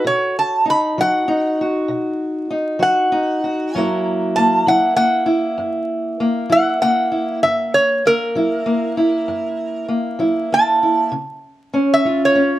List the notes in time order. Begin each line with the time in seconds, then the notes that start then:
Already playing: F#4
0.04 B2 C#5
0.39 A5
0.66 D#4
0.70 B5
0.98 F#3 F#4 F#5
1.28 D#4
1.61 F#4
1.88 B2
2.51 D#4
2.79 F#3 F#4 F#5
3.12 D#4
3.44 F#4
3.75 F#2 F#3 A#3 E4 A#4 A5
4.36 A#3 A5
4.67 F#3 E4 F#5
4.96 A#3 F#5
5.26 E4
5.58 F#2
6.20 A#3
6.49 F#3 E4 F#5
6.82 A#3 F#5
7.12 E4
7.43 F#2 E5
7.74 C#5
8.06 A#3 A#4
8.35 F#3 E4
8.66 A#3
8.97 E4
9.28 F#2
9.88 A#3
10.19 F#3 E4
10.52 A#3 A5
10.83 E4
11.12 C#3
11.74 C#4
11.94 E5
12.05 G#3 F4
12.25 C#5
12.35 C#4